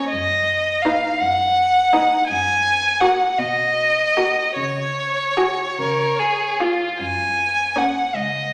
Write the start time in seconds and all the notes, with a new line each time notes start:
0.09 F#2 D#5
0.82 D#4 B4 F5
1.20 F#2 F#5
1.93 D#4 B4
2.27 F#2 G#5
3.00 F#4 A#4 F#5
3.38 B2 D#5
4.17 F#4 A#4
4.56 C#3 C#5
5.37 F#4 G#4
5.79 C#3 A#4
6.19 G#4
6.60 F4
6.99 F#2 G#5
7.76 C#4 A#4 F#5
8.14 C#2 D#5